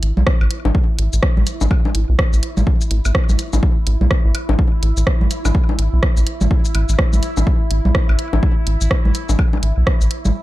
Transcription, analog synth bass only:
0.03 A1
0.17 B1
0.41 A1
0.65 A1
0.99 A1
1.13 A1
1.37 A1
1.61 A1
1.95 A1
2.09 B1
2.33 A1
2.57 A1
2.91 A1
3.05 A1
3.29 A1
3.53 A1
3.87 A1
4.01 B1
4.25 A1
4.49 A1
4.83 A1
4.97 A1
5.21 A1
5.45 A1
5.79 A1
5.93 B1
6.17 A1
6.41 A1
6.75 A1
6.89 A1
7.13 A1
7.37 A1
7.71 A1
7.85 B1
8.09 A1
8.33 A1
8.67 A1
8.81 A1
9.05 A1
9.29 A1
9.63 A1
9.77 B1
10.01 A1
10.25 A1

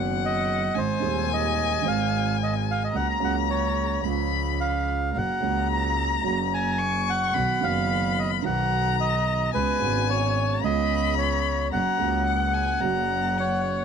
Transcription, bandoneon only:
0.26 D#5
0.78 C5
1.33 D#5
1.87 F5
2.43 D#5
2.71 F5
2.84 D#5
2.96 F#5
3.09 A#5
3.24 F#5
3.50 C#5
4.60 F5
5.17 F#5
5.73 A#5
6.27 A#5
6.54 G#5
7.10 F#5
7.64 F5
8.19 D#5
8.46 F#5
9.00 D#5
9.54 B4
10.10 C#5
10.65 D#5
11.18 C#5
11.73 F#5
13.40 C#5

